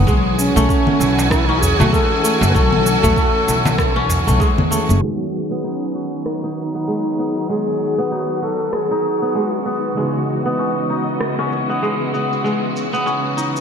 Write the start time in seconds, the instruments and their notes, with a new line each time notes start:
Already playing: kora A3 B3 D#4
0.07 string section E3 C#4 F#4 G#5, kora G#3, kick, shaker
0.38 duduk C#4, darbuka tek, shaker
0.56 upright bass B1, kora A3, shaker
0.69 kora C#4, kick, shaker
0.87 low conga
1.00 upright bass B1, kora E4, darbuka ka, shaker
1.19 darbuka tek, shaker
1.31 duduk D#4, kick, cross-stick, shaker
1.39 duduk E4
1.46 kora C#4, duduk D#4, darbuka tek
1.59 duduk G#4 A4
1.63 darbuka dum, shaker
1.79 upright bass B1, kora A3, duduk F#4, darbuka ka, darbuka tek, low conga, shaker
1.92 kora G#3, duduk A4, kick, shaker
2.23 kora A3, shaker
2.41 upright bass F#1, darbuka tek, shaker
2.49 duduk B4
2.54 upright bass B1, kora A3, duduk A4, kick, shaker
2.73 low conga
2.86 darbuka tek, shaker
3.03 upright bass B1, kora A3, darbuka dum, shaker
3.16 kora C#4, kick, shaker
3.47 upright bass B1, kora E4, darbuka ka, shaker
3.65 darbuka tek, low conga, shaker
3.78 kick, cross-stick, shaker
3.96 kora C#4
4.10 darbuka tek, darbuka dum, shaker
4.27 upright bass B1, kora A3, darbuka ka, shaker
4.40 kora G#3, kick, shaker
4.58 darbuka dum, low conga
4.71 kora A3, shaker
4.89 upright bass F#1, shaker
5.00 string section D#3 F#3 B3 F#4, tine electric piano F#3 B3 D#4, kora G#3
5.04 tine electric piano F#4
5.34 shaker
5.51 kora B3
5.64 duduk C#4, kora D#4
5.95 kora F#4
6.26 duduk D#4, cross-stick
6.44 kora D#4
6.75 kora B3
6.88 kora G#3
7.18 kora B3, shaker
7.38 shaker
7.49 kora G#3, duduk G#4
7.81 shaker
7.98 kora B3, shaker
8.06 duduk G#4
8.11 kora D#4, duduk F#4, shaker
8.42 kora F#4, duduk A4, shaker
8.61 shaker
8.73 duduk G#4, cross-stick, shaker
8.91 kora D#4
9.05 shaker
9.22 kora B3, shaker
9.35 kora G#3, shaker
9.66 kora B3, shaker
9.85 shaker
9.95 tine electric piano C#3 E3 G#3 B3 D#4 F#4, string section C#3 E3 D#5, kora G#3, shaker
10.29 shaker
10.46 kora B3, shaker
10.59 kora C#4, shaker
10.90 kora D#4, shaker
11.09 shaker
11.21 cross-stick, shaker
11.39 kora C#4
11.52 shaker
11.70 kora B3, shaker
11.83 kora G#3, shaker
12.14 kora B3, shaker
12.33 shaker
12.44 kora G#3, shaker
12.76 shaker
12.93 kora B3, shaker
13.06 kora C#4, shaker
13.37 kora D#4, shaker
13.56 shaker